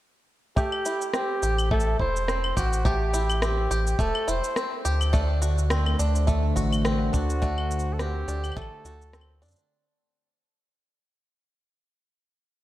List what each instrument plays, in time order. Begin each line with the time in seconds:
0.56 five-string banjo A3 G4, flugelhorn G4, kick, shaker
0.72 claves
0.86 five-string banjo E4, shaker
1.02 shaker
1.14 five-string banjo C4, flugelhorn G4, cross-stick, shaker
1.42 sub bass A1, five-string banjo G4, shaker
1.58 claves, shaker
1.71 five-string banjo A3, flugelhorn A4, kick
1.80 shaker
2.00 sub bass E1, five-string banjo E4, flugelhorn C5, kick
2.16 shaker
2.28 five-string banjo C4, cross-stick, shaker
2.44 claves
2.57 sub bass A1, flugelhorn F#4, five-string banjo G4, kick, shaker
2.73 shaker
2.85 five-string banjo A3 G4, flugelhorn G4, kick, shaker
3.13 five-string banjo E4, shaker
3.30 claves, shaker
3.42 five-string banjo C4, flugelhorn G4, cross-stick, shaker
3.70 sub bass A1, five-string banjo G4, shaker
3.87 shaker
3.99 sub bass E1, five-string banjo A3, flugelhorn A4, kick, shaker
4.15 claves
4.28 sub bass E1, five-string banjo E4, flugelhorn C5, shaker
4.44 shaker
4.56 five-string banjo C4, cross-stick, shaker
4.85 sub bass D2, five-string banjo G4, shaker
5.01 claves, shaker
5.13 analog synth pad D3, five-string banjo A3 D4, kick, shaker
5.42 five-string banjo F#4, shaker
5.51 analog synth pad A3
5.58 shaker
5.68 five-string banjo C4, analog synth pad C5, cross-stick, shaker
5.86 claves
5.99 sub bass D2, five-string banjo D4, shaker
6.15 shaker
6.27 five-string banjo A3, kick, shaker
6.32 analog synth pad F#5
6.56 sub bass A1, five-string banjo F#4, kick, shaker
6.73 claves, shaker
6.85 five-string banjo C4, cross-stick, shaker
7.13 sub bass D2, five-string banjo D4, flugelhorn F#4, kick, shaker
7.30 shaker
7.42 five-string banjo A3 D4, kick, shaker
7.58 claves
7.71 shaker
7.79 shaker
7.93 flugelhorn A4
7.99 five-string banjo C4, flugelhorn G4, cross-stick, shaker
8.28 sub bass D2, five-string banjo D4, shaker
8.44 claves, shaker
8.52 claves
8.57 sub bass A1, five-string banjo A3, flugelhorn A4, kick, shaker
8.62 claves
8.84 sub bass D2, five-string banjo F#4, shaker
9.02 shaker
9.13 five-string banjo C4, cross-stick, shaker
9.21 claves
9.42 sub bass F#2, five-string banjo D4, shaker
9.45 shaker
9.48 shaker
9.51 shaker
9.56 shaker
9.59 shaker